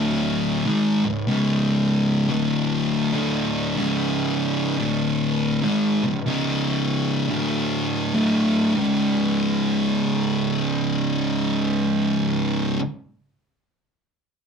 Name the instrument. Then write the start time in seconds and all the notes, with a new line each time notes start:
distorted electric guitar
Already playing: D2 A2 D3
0.65 G#2 D#3 G#3
1.05 C#2 G#2
1.27 C#2 G#2 C#3
2.29 D2 A2 D3
3.13 D2 A2 D3
3.76 C#2 G#2 C#3
4.78 D2 A2 D3
5.63 G#2 D#3 G#3
6.04 C#2 G#2
6.27 C#2 G#2 C#3
7.29 D2 A2 D3
8.14 D2 A2 D3
8.75 C#2 G#2
8.79 C#3